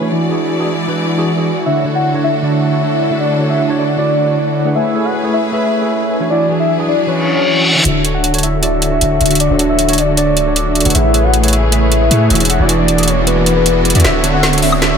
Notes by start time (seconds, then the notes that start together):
0.01 E3 D4 F#4 C#5
0.11 E3 G#3 E4 F#4 D5 G#5
0.29 E3 D4 F#4 G#4
0.59 E3 D4 F#4 G#4
0.87 E3 D4 F#4 B4
1.17 E3 D4 F#4 G#4
1.36 E3 D4 F#4 G#4
1.65 D3 A3 D4 E4 A4 C#5 E5 F#5
1.84 D3 D4 F#4 C#5
1.95 F#5
2.13 D3 D4 F#4 C#5
2.24 E5
2.42 D3 D4 F#4 D5 E5
2.71 D3 D4 F#4 C#5
3.10 D3 D4 F#4 E5
3.21 D5
3.39 D3 D4 F#4 C#5
3.50 E5
3.68 D3 D4 F#4 C#5
3.79 D5
3.97 D3 D4 F#4 D5
4.26 D3 D4 F#4 C#5
4.65 A3 G#4 B4 F#5
4.75 A3 C#4 E4 G#4 B4 C#5 E5 G#5
4.94 A3 G#4 B4 C#5
5.05 F#5
5.23 A3 G#4 B4 C#5
5.34 E5
5.52 A3 G#4 B4 E5
5.81 A3 G#4 B4 C#5
6.20 E3 D4 F#4 C#5
6.30 E3 F#3 D4 E4 F#4 G#4 D5 G#5
6.49 E3 D4 F#4 G#4
6.60 E5
6.78 E3 D4 F#4 G#4
6.88 D5
7.07 E3 D4 F#4 B4 C#5, reverse cymbal
7.36 E3 D4 F#4 G#4
7.75 D3 D4 F#4 E5
7.85 D1 D3 A3 D4 F#4 A4 C#5 E5, closed hi-hat, riser
8.04 D3 D4 F#4 C#5, closed hi-hat
8.14 F#5
8.24 closed hi-hat
8.33 D3 D4 F#4 C#5, closed hi-hat
8.38 closed hi-hat
8.43 E5, closed hi-hat
8.61 D3 D4 F#4 D5 E5, closed hi-hat
8.82 closed hi-hat
8.91 D3 D4 F#4 C#5
9.01 D1 D3 D4 F#4 C#5 E5, closed hi-hat
9.20 D1 D3 D4 F#4 C#5 F#5, closed hi-hat
9.26 D3, closed hi-hat
9.30 D4 F#4 E5, closed hi-hat
9.35 closed hi-hat
9.40 D5, closed hi-hat
9.50 D1 D3 D4 F#4 C#5 E5
9.58 D3 D4 F#4 C#5, closed hi-hat
9.69 E5
9.79 closed hi-hat
9.87 D3 D4 F#4 C#5, closed hi-hat
9.93 closed hi-hat
9.98 D5, closed hi-hat
10.16 D3 D4 F#4 D5, closed hi-hat
10.37 closed hi-hat
10.46 D3 D4 F#4 C#5
10.56 closed hi-hat
10.75 closed hi-hat
10.80 A3, closed hi-hat
10.85 D1 D3 D4 F#4 G#4 B4 C#5 E5 F#5, closed hi-hat
10.90 closed hi-hat
10.94 A1 C#3 A3 B3 E4 G#4 B4 C#5 E5, closed hi-hat
11.13 A3 G#4 B4 C#5, closed hi-hat
11.24 F#5
11.34 closed hi-hat
11.42 A3 G#4 B4 C#5, closed hi-hat
11.48 closed hi-hat
11.53 E5, closed hi-hat
11.71 A3 G#4 B4 E5, closed hi-hat
11.92 closed hi-hat
12.00 A3 G#4 B4 C#5
12.11 A2 A3 E4 G#4 B4 C#5, closed hi-hat
12.30 E1 E3 E4 F#4 G#4 E5, closed hi-hat
12.35 E3, closed hi-hat
12.40 D4 F#4 C#5, closed hi-hat
12.45 closed hi-hat
12.49 E3 G#3 D4 F#4 F#5, closed hi-hat
12.59 E1 E3 E4 F#4 G#4 D5
12.68 E3 D4 F#4 G#4, closed hi-hat
12.79 D5
12.88 closed hi-hat
12.97 E3 D4 F#4 G#4, closed hi-hat
13.03 closed hi-hat
13.08 C#5, closed hi-hat
13.26 E3 D4 F#4 B4, closed hi-hat
13.46 closed hi-hat
13.55 E3 D4 F#4 G#4
13.66 closed hi-hat
13.85 closed hi-hat
13.90 closed hi-hat
13.94 E2 D3 E3 D4 E4 F#4 G#4 D5 E5, closed hi-hat
14.00 closed hi-hat
14.04 D1 D3 A3 D4 F#4 A4 C#5 E5, snare
14.23 D3 D4 F#4 C#5, closed hi-hat
14.34 F#5
14.43 snare, closed hi-hat
14.52 D3 D4 F#4 C#5, closed hi-hat
14.58 closed hi-hat
14.62 E5, open hi-hat
14.72 high woodblock
14.81 D3 D4 F#4 D5 E5, snare, closed hi-hat